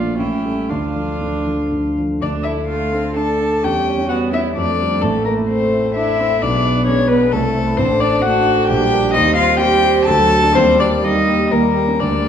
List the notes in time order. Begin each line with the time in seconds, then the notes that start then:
Already playing: A#1 A#2 F3 A3 D4 F4 D5
0.19 A1 A2 C#4 E4 G5
0.45 G3 E4 A4
0.69 D2 D3 D4 F4 F5
0.95 F3 D4 A4
1.21 D2 D3
1.47 F3 D4 A4
1.71 D2 D3
1.97 F3 D4 A4
2.21 D2 D4 D5
2.34 A3
2.43 E4 A4 E5
2.57 D4
2.67 A3 F4 F5
2.81 A4
2.92 C4 D4
3.05 A4
3.15 D4 A4 A5
3.28 A4
3.40 D4
3.52 A4
3.63 E2 C#4 G4 G5
3.75 G3
3.87 C#5
3.98 C#4
4.08 G3 B3 F#4 F#5
4.21 C#5
4.33 C#4 E4 E5
4.44 G4
4.55 F2 A3 D4 D5
4.68 A3
4.79 G3 A4
4.91 D4
5.01 A1 A3 A4
5.14 A3
5.25 A#3 A4 A#4
5.37 E4
5.49 A3 C4 C5
5.62 A4
5.73 E4
5.84 A4
5.95 D4 E4 E5
6.08 A4
6.19 C4 E4
6.31 A4
6.41 B1 B3 D4 D5
6.54 G#3
6.66 D5
6.76 D4
6.87 G#3 C#4 C#5
6.98 D5
7.08 B3 D4 B4
7.21 G#4
7.32 C2 A3 A4
7.44 A3
7.54 C5
7.66 E4
7.77 A1 C4 D4 C5
7.89 A3
8.00 D4 C5 D5
8.12 D4
8.22 A3 D4 F#4 F#5
8.35 C5
8.46 D4
8.58 A4
8.68 A#1 D4 G4 G5
8.82 G3
8.93 A#4
9.04 D4
9.14 D#2 C4 D#4 D#5
9.27 G3
9.36 F4 C5 F5
9.50 G4
9.60 G3 C4 G4 G5
9.74 C5
9.85 G4
9.96 C5
10.06 D2 F#3 A4 A5
10.19 F#3
10.31 A4
10.44 D4
10.54 D#2 G3 C4 C5
10.67 G3
10.79 D4 G4 D5
10.91 A#3
11.02 G3 D#4 D#5
11.15 G4
11.27 A#3
11.38 G4
11.51 D#2 G3 A#3 A#4
11.63 A#3
11.76 G4
11.88 C#4
11.99 D2 G3 D4 D5
12.14 A#3